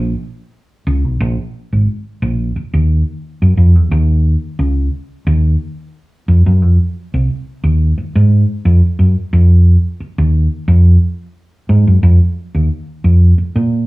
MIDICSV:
0, 0, Header, 1, 3, 480
1, 0, Start_track
1, 0, Tempo, 676437
1, 857, Time_signature, 4, 2, 24, 8
1, 9840, End_track
2, 0, Start_track
2, 0, Title_t, "Fingered electric bass"
2, 0, Program_c, 0, 33
2, 0, Note_on_c, 0, 34, 112
2, 94, Note_off_c, 0, 34, 0
2, 616, Note_on_c, 0, 37, 95
2, 741, Note_off_c, 0, 37, 0
2, 741, Note_on_c, 0, 35, 77
2, 836, Note_off_c, 0, 35, 0
2, 855, Note_on_c, 0, 34, 113
2, 962, Note_off_c, 0, 34, 0
2, 1225, Note_on_c, 0, 32, 76
2, 1318, Note_off_c, 0, 32, 0
2, 1577, Note_on_c, 0, 34, 83
2, 1776, Note_off_c, 0, 34, 0
2, 1941, Note_on_c, 0, 39, 86
2, 2142, Note_off_c, 0, 39, 0
2, 2426, Note_on_c, 0, 42, 77
2, 2519, Note_off_c, 0, 42, 0
2, 2536, Note_on_c, 0, 41, 78
2, 2663, Note_off_c, 0, 41, 0
2, 2663, Note_on_c, 0, 40, 81
2, 2758, Note_off_c, 0, 40, 0
2, 2778, Note_on_c, 0, 39, 105
2, 3083, Note_off_c, 0, 39, 0
2, 3257, Note_on_c, 0, 37, 88
2, 3457, Note_off_c, 0, 37, 0
2, 3737, Note_on_c, 0, 39, 101
2, 3938, Note_off_c, 0, 39, 0
2, 4457, Note_on_c, 0, 41, 82
2, 4565, Note_off_c, 0, 41, 0
2, 4586, Note_on_c, 0, 42, 92
2, 4696, Note_off_c, 0, 42, 0
2, 4696, Note_on_c, 0, 41, 104
2, 4804, Note_off_c, 0, 41, 0
2, 5065, Note_on_c, 0, 36, 80
2, 5160, Note_off_c, 0, 36, 0
2, 5418, Note_on_c, 0, 39, 80
2, 5619, Note_off_c, 0, 39, 0
2, 5787, Note_on_c, 0, 44, 92
2, 5987, Note_off_c, 0, 44, 0
2, 6140, Note_on_c, 0, 41, 91
2, 6246, Note_off_c, 0, 41, 0
2, 6379, Note_on_c, 0, 42, 79
2, 6486, Note_off_c, 0, 42, 0
2, 6620, Note_on_c, 0, 41, 97
2, 6925, Note_off_c, 0, 41, 0
2, 7226, Note_on_c, 0, 39, 86
2, 7426, Note_off_c, 0, 39, 0
2, 7577, Note_on_c, 0, 41, 100
2, 7778, Note_off_c, 0, 41, 0
2, 8296, Note_on_c, 0, 44, 94
2, 8403, Note_off_c, 0, 44, 0
2, 8425, Note_on_c, 0, 42, 72
2, 8519, Note_off_c, 0, 42, 0
2, 8536, Note_on_c, 0, 41, 95
2, 8643, Note_off_c, 0, 41, 0
2, 8903, Note_on_c, 0, 39, 78
2, 8998, Note_off_c, 0, 39, 0
2, 9255, Note_on_c, 0, 41, 77
2, 9455, Note_off_c, 0, 41, 0
2, 9619, Note_on_c, 0, 46, 85
2, 9820, Note_off_c, 0, 46, 0
2, 9840, End_track
3, 0, Start_track
3, 0, Title_t, "Muted fingered electric bass strokes"
3, 1817, Note_on_c, 9, 29, 50
3, 1888, Note_off_c, 9, 29, 0
3, 5661, Note_on_c, 9, 29, 53
3, 5732, Note_off_c, 9, 29, 0
3, 7099, Note_on_c, 9, 29, 45
3, 7170, Note_off_c, 9, 29, 0
3, 9495, Note_on_c, 9, 29, 49
3, 9566, Note_off_c, 9, 29, 0
3, 9840, End_track
0, 0, End_of_file